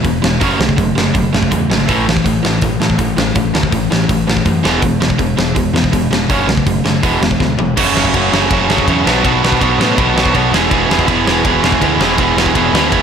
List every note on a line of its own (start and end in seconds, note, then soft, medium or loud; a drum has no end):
0.03 0.18 E1 medium
0.03 0.21 E2 medium
0.03 0.21 B2 medium
0.03 0.20 E3 medium
0.03 0.21 G#3 medium
0.03 kick loud
0.03 open hi-hat medium
0.22 0.37 E1 medium
0.22 0.39 E2 medium
0.22 0.39 B2 medium
0.22 0.39 E3 medium
0.22 0.39 G#3 medium
0.22 snare loud
0.40 0.55 F#1 medium
0.40 0.58 F#2 loud
0.40 0.59 C#3 medium
0.40 0.58 F#3 medium
0.40 0.58 A3 loud
0.40 0.58 C#4 medium
0.40 kick loud
0.40 open hi-hat medium
0.59 0.74 B1 medium
0.59 0.76 F#2 medium
0.59 0.76 C#3 medium
0.59 0.75 F#3 medium
0.59 0.76 A3 medium
0.59 snare loud
0.69 kick medium
0.77 0.92 F#1 medium
0.77 0.95 F#2 medium
0.77 0.95 C#3 medium
0.77 0.94 F#3 medium
0.77 0.94 A3 medium
0.77 kick loud
0.77 open hi-hat medium
0.95 1.10 F#1 medium
0.95 1.13 F#2 medium
0.95 1.14 C#3 medium
0.95 1.12 F#3 medium
0.95 1.13 A3 medium
0.95 snare loud
1.14 1.29 F#1 medium
1.14 1.31 F#2 medium
1.14 1.32 C#3 medium
1.14 1.31 F#3 medium
1.14 1.31 A3 medium
1.14 kick loud
1.14 open hi-hat medium
1.33 1.47 F#1 medium
1.33 1.50 F#2 medium
1.33 1.50 C#3 medium
1.33 1.49 F#3 medium
1.33 1.50 A3 medium
1.33 snare loud
1.43 kick medium
1.50 1.66 E2 loud
1.50 1.68 F#2 medium
1.50 1.68 C#3 medium
1.50 1.68 F#3 medium
1.50 1.68 A3 medium
1.50 kick medium
1.50 open hi-hat medium
1.70 1.84 G#1 medium
1.70 1.87 F#2 medium
1.70 1.87 C#3 medium
1.70 1.86 F#3 medium
1.70 1.87 A3 medium
1.70 snare loud
1.87 2.17 A1 medium
1.87 2.05 A2 medium
1.87 2.05 E3 medium
1.87 2.06 A3 loud
1.87 kick loud
1.87 open hi-hat medium
2.06 2.23 A2 medium
2.06 2.24 E3 medium
2.06 snare loud
2.17 kick medium
2.24 2.39 A1 medium
2.24 2.41 A2 medium
2.24 2.42 E3 medium
2.24 kick loud
2.24 open hi-hat medium
2.43 2.58 A1 medium
2.43 2.60 A2 medium
2.43 2.60 E3 medium
2.43 snare loud
2.62 2.76 A1 medium
2.62 2.79 A2 medium
2.62 2.79 E3 medium
2.62 kick loud
2.62 open hi-hat medium
2.80 2.97 A2 medium
2.80 2.94 A2 medium
2.80 2.97 E3 medium
2.80 snare loud
2.90 kick medium
2.98 3.12 A1 medium
2.98 3.15 A2 medium
2.98 3.15 E3 medium
2.98 kick medium
2.98 open hi-hat medium
3.16 3.31 A1 medium
3.16 3.33 A2 medium
3.16 3.34 E3 medium
3.16 snare loud
3.35 3.50 A1 medium
3.35 3.52 A2 medium
3.35 3.52 E3 medium
3.35 kick loud
3.35 open hi-hat medium
3.54 3.68 D2 medium
3.54 3.70 A2 medium
3.54 3.70 E3 medium
3.54 snare loud
3.63 kick medium
3.72 3.86 A1 medium
3.72 3.89 A2 medium
3.72 3.89 E3 medium
3.72 kick loud
3.72 open hi-hat medium
3.91 4.05 A1 medium
3.91 4.07 A2 medium
3.91 4.07 E3 medium
3.91 snare loud
4.09 4.23 A1 loud
4.09 4.26 A2 medium
4.09 4.26 E3 medium
4.09 kick loud
4.09 open hi-hat medium
4.27 4.41 A1 medium
4.27 4.44 A2 medium
4.27 4.44 E3 medium
4.27 snare loud
4.37 kick medium
4.46 4.60 F#2 medium
4.46 4.62 A2 medium
4.46 4.62 E3 medium
4.46 kick loud
4.46 open hi-hat medium
4.63 4.78 E1 loud
4.63 4.80 E2 medium
4.63 4.81 B2 loud
4.63 4.81 E3 loud
4.63 4.81 G#3 loud
4.63 4.82 B3 medium
4.63 snare loud
4.82 5.10 E1 medium
4.82 4.99 E2 medium
4.82 4.99 B2 medium
4.82 4.99 E3 medium
4.82 4.99 G#3 medium
4.82 kick loud
4.82 open hi-hat medium
5.00 5.17 E2 medium
5.00 5.17 B2 medium
5.00 5.17 E3 medium
5.00 5.18 G#3 medium
5.00 snare loud
5.10 kick medium
5.18 5.33 E1 medium
5.18 5.35 E2 medium
5.18 5.36 B2 medium
5.18 5.35 E3 medium
5.18 5.36 G#3 medium
5.18 kick loud
5.18 open hi-hat medium
5.36 5.52 E1 medium
5.36 5.54 E2 medium
5.36 5.54 B2 medium
5.36 5.54 E3 medium
5.36 5.54 G#3 medium
5.36 snare loud
5.55 5.70 E1 medium
5.55 5.72 E2 medium
5.55 5.73 B2 medium
5.55 5.72 E3 medium
5.55 5.72 G#3 medium
5.55 kick loud
5.55 open hi-hat medium
5.73 5.88 E2 medium
5.73 5.91 E2 medium
5.73 5.91 B2 medium
5.73 5.91 E3 medium
5.73 5.91 G#3 medium
5.73 snare loud
5.84 kick medium
5.92 6.07 E1 medium
5.92 6.09 E2 medium
5.92 6.09 B2 medium
5.92 6.09 E3 medium
5.92 6.09 G#3 medium
5.92 kick loud
5.92 open hi-hat medium
6.10 6.25 F1 medium
6.10 6.28 E2 medium
6.10 6.28 B2 medium
6.10 6.28 E3 medium
6.10 6.28 G#3 medium
6.10 snare loud
6.29 6.44 F#1 medium
6.29 6.46 F#2 medium
6.29 6.47 C#3 medium
6.29 6.47 F#3 medium
6.29 6.47 A3 loud
6.29 6.47 C#4 loud
6.29 kick loud
6.29 open hi-hat medium
6.47 6.62 B1 medium
6.47 6.64 F#2 medium
6.47 6.65 C#3 medium
6.47 6.65 F#3 medium
6.47 6.65 A3 medium
6.47 snare loud
6.57 kick medium
6.66 6.80 F#1 medium
6.66 6.83 F#2 medium
6.66 6.83 C#3 medium
6.66 6.83 F#3 medium
6.66 6.84 A3 medium
6.66 kick loud
6.66 open hi-hat medium
6.84 6.99 F#1 medium
6.84 7.01 F#2 medium
6.84 7.01 C#3 medium
6.84 7.01 F#3 medium
6.84 7.01 A3 medium
6.84 snare loud
7.03 7.17 E1 loud
7.03 7.20 E2 medium
7.03 7.20 B2 medium
7.03 7.20 E3 medium
7.03 7.21 G#3 medium
7.03 7.21 B3 loud
7.03 kick loud
7.03 open hi-hat medium
7.21 7.36 E1 medium
7.21 7.37 E2 medium
7.21 7.38 B2 medium
7.21 7.38 E3 medium
7.21 7.38 G#3 medium
7.21 snare loud
7.31 kick medium
7.39 7.54 D2 medium
7.39 7.56 E2 medium
7.39 7.56 B2 medium
7.39 7.57 E3 medium
7.39 7.57 G#3 medium
7.39 kick loud
7.39 snare medium
7.58 7.73 E1 medium
7.58 7.75 E2 medium
7.58 7.75 B2 medium
7.58 7.75 E3 medium
7.58 7.76 G#3 medium
7.58 floor tom medium
7.77 7.94 F#1 medium
7.77 7.93 F#2 medium
7.77 7.94 C#3 medium
7.77 7.95 F#3 medium
7.77 7.95 A3 loud
7.77 7.95 C#4 loud
7.77 7.96 F#4 loud
7.77 kick loud
7.77 crash loud
7.94 8.13 F#1 medium
7.94 8.13 F#2 medium
7.94 8.14 C#3 medium
7.94 8.15 F#3 medium
7.94 8.14 A3 loud
7.94 8.15 C#4 medium
7.94 8.16 F#4 medium
7.94 snare loud
8.05 kick medium
8.14 8.31 F#1 medium
8.14 8.31 F#2 medium
8.14 8.32 C#3 medium
8.14 8.33 F#3 medium
8.14 8.33 A3 medium
8.14 8.33 C#4 medium
8.14 8.34 F#4 medium
8.14 kick loud
8.14 ride medium
8.32 8.49 F#1 medium
8.32 8.49 F#2 loud
8.32 8.50 C#3 medium
8.32 8.51 F#3 loud
8.32 8.51 A3 loud
8.32 8.51 C#4 loud
8.32 8.52 F#4 loud
8.32 snare loud
8.50 8.68 F#1 medium
8.50 8.67 F#2 medium
8.50 8.68 C#3 medium
8.50 8.69 F#3 medium
8.50 8.69 A3 medium
8.50 8.70 C#4 medium
8.50 8.70 F#4 loud
8.50 kick loud
8.50 ride medium
8.68 8.86 F#1 medium
8.68 8.86 F#2 medium
8.68 8.87 C#3 medium
8.68 8.87 F#3 medium
8.68 8.88 A3 medium
8.68 8.88 C#4 medium
8.68 8.88 F#4 medium
8.68 snare loud
8.78 kick medium
8.87 9.04 E2 loud
8.87 9.04 F#2 loud
8.87 9.05 C#3 loud
8.87 9.05 F#3 loud
8.87 9.05 A3 loud
8.87 9.05 C#4 medium
8.87 9.06 F#4 loud
8.87 kick loud
8.87 ride medium
9.05 9.23 B1 medium
9.05 9.22 B2 loud
9.05 9.23 F#3 medium
9.05 9.24 B3 loud
9.05 9.24 D4 loud
9.05 9.24 F#4 loud
9.05 snare loud
9.23 9.58 B1 medium
9.23 9.41 B2 medium
9.23 9.41 F#3 loud
9.23 9.42 B3 loud
9.23 9.42 D4 loud
9.23 9.43 F#4 loud
9.23 kick loud
9.23 ride medium
9.42 9.60 B2 medium
9.42 9.60 F#3 medium
9.42 9.62 B3 medium
9.42 9.61 D4 loud
9.42 9.62 F#4 loud
9.42 snare loud
9.52 kick medium
9.61 9.77 B1 medium
9.61 9.77 B2 medium
9.61 9.78 F#3 medium
9.61 9.80 B3 medium
9.61 9.79 D4 medium
9.61 9.80 F#4 medium
9.61 kick loud
9.61 ride medium
9.78 9.96 A2 medium
9.78 9.96 B2 medium
9.78 9.97 F#3 medium
9.78 9.98 B3 loud
9.78 9.98 D4 loud
9.78 9.98 F#4 loud
9.78 snare loud
9.98 10.15 B1 medium
9.98 10.15 B2 medium
9.98 10.16 F#3 medium
9.98 10.17 B3 medium
9.98 10.17 D4 medium
9.98 10.17 F#4 medium
9.98 kick loud
9.98 ride medium
10.15 10.33 B1 medium
10.15 10.33 B2 medium
10.15 10.33 F#3 medium
10.15 10.34 B3 medium
10.15 10.35 D4 medium
10.15 10.34 F#4 loud
10.15 snare loud
10.25 kick medium
10.34 10.51 B1 loud
10.34 10.52 B2 medium
10.34 10.52 F#3 loud
10.34 10.54 B3 loud
10.34 10.52 D4 loud
10.34 10.52 F#4 loud
10.34 kick medium
10.34 ride medium
10.52 10.69 E1 loud
10.52 10.72 E2 loud
10.52 10.72 B2 loud
10.52 10.70 E3 loud
10.52 10.71 G#3 loud
10.52 10.71 B3 loud
10.52 10.72 E4 loud
10.52 10.72 G#4 loud
10.52 snare loud
10.71 10.88 E1 medium
10.71 10.90 E2 loud
10.71 10.90 B2 loud
10.71 10.89 E3 loud
10.71 10.90 G#3 loud
10.71 10.90 B3 loud
10.71 10.90 E4 loud
10.71 10.91 G#4 loud
10.71 kick loud
10.71 ride medium
10.89 11.06 E1 medium
10.89 11.08 E2 medium
10.89 11.08 B2 medium
10.89 11.06 E3 medium
10.89 11.07 G#3 medium
10.89 11.08 B3 loud
10.89 11.08 E4 medium
10.89 11.08 G#4 loud
10.89 snare loud
10.99 kick medium
11.07 11.25 E1 loud
11.07 11.26 E2 medium
11.07 11.26 B2 medium
11.07 11.25 E3 medium
11.07 11.26 G#3 medium
11.07 11.26 B3 medium
11.07 11.26 E4 loud
11.07 11.27 G#4 medium
11.07 kick loud
11.07 ride medium
11.25 11.43 E1 medium
11.25 11.44 E2 medium
11.25 11.45 B2 loud
11.25 11.45 E3 loud
11.25 11.44 G#3 medium
11.25 11.45 B3 loud
11.25 11.46 E4 loud
11.25 11.46 G#4 loud
11.25 snare loud
11.45 11.62 E1 loud
11.45 11.63 E2 medium
11.45 11.63 B2 medium
11.45 11.62 E3 medium
11.45 11.62 G#3 medium
11.45 11.63 B3 loud
11.45 11.64 E4 medium
11.45 11.64 G#4 loud
11.45 kick loud
11.45 ride medium
11.62 11.80 E1 loud
11.62 11.81 E2 medium
11.62 11.81 B2 medium
11.62 11.81 E3 medium
11.62 11.80 G#3 medium
11.62 11.81 B3 medium
11.62 11.82 E4 medium
11.62 11.82 G#4 medium
11.62 snare loud
11.72 kick medium
11.81 11.98 D2 loud
11.81 11.99 E2 medium
11.81 12.00 B2 loud
11.81 11.99 E3 loud
11.81 11.99 G#3 loud
11.81 12.00 B3 loud
11.81 12.01 E4 loud
11.81 12.00 G#4 loud
11.81 kick loud
11.81 ride medium
11.99 12.17 E1 medium
11.99 12.16 E2 medium
11.99 12.17 B2 loud
11.99 12.17 E3 medium
11.99 12.18 G#3 loud
11.99 12.18 B3 loud
11.99 12.18 E4 medium
11.99 12.19 G#4 loud
11.99 snare loud
12.18 12.53 E1 medium
12.18 12.34 E2 loud
12.18 12.35 B2 loud
12.18 12.35 E3 medium
12.18 12.36 G#3 medium
12.18 12.37 B3 loud
12.18 12.37 E4 loud
12.18 12.38 G#4 loud
12.18 kick loud
12.18 ride medium
12.36 12.54 E2 medium
12.36 12.54 B2 loud
12.36 12.54 E3 medium
12.36 12.54 G#3 medium
12.36 12.55 B3 medium
12.36 12.55 E4 loud
12.36 12.55 G#4 loud
12.36 snare loud
12.46 kick medium
12.55 12.72 E1 loud
12.55 12.72 E2 medium
12.55 12.72 B2 medium
12.55 12.72 E3 medium
12.55 12.73 G#3 medium
12.55 12.73 B3 loud
12.55 12.73 E4 loud
12.55 12.74 G#4 medium
12.55 kick loud
12.55 ride medium
12.73 12.90 D2 medium
12.73 12.90 E2 loud
12.73 12.91 B2 loud
12.73 12.90 E3 loud
12.73 12.90 G#3 loud
12.73 12.91 B3 loud
12.73 12.91 E4 loud
12.73 12.92 G#4 loud
12.73 snare loud
12.91 13.02 E1 loud
12.91 13.02 E2 medium
12.91 13.02 B2 medium
12.91 13.02 E3 medium
12.91 13.02 G#3 medium
12.91 13.02 B3 medium
12.91 13.02 E4 loud
12.91 13.02 G#4 loud
12.91 kick loud
12.91 ride medium